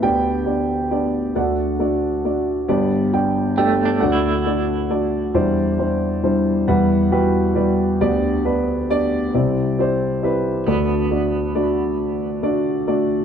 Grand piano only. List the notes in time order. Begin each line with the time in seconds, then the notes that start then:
0.02 D2 D3 B3 D4 G4 B4 D5 G5
0.46 B3 D4 G4 D5
0.91 B3 D4 G4 D5
1.35 D2 D3 A3 D4 F#4 A4 D5 F#5
1.79 A3 D4 F#4 D5
2.25 A3 D4 F#4 D5
2.68 G1 G2 B3 D4 G4 D5
3.13 B3 D4 G4 D5 G5
3.57 B3 D4 G4 D5 G5
4.00 D2 D3 A3 D4 F#4 A4 D5 F#5
4.46 A3 D4 F#4 D5
4.90 A3 D4 F#4 D5
5.34 E2 E3 G3 D4 E4 C5 D5
5.39 G4
5.79 G3 D4 E4 C5
6.23 G3 D4 E4 C5
6.68 E2 E3 G3 E4 B4 F#5
7.11 G3 E4 F#4 B4 G5
7.55 G3 E4 F#4 B4 D5
8.01 D2 D3 B3 D4 G4 D5
8.45 B3 D4 G4 B4 D5
8.90 B3 D4 G4 D5
9.34 C2 C3 C4 E4 G4 D5
9.79 C4 E4 G4 C5 D5
10.23 C4 E4 G4 B4 D5
10.67 D2 D3 A3 D4 F#4 A4 D5
11.11 A3 D4 F#4 D5
11.55 A3 D4 F#4 D5
12.43 A3 D4 F#4 D5
12.88 A3 D4 F#4 D5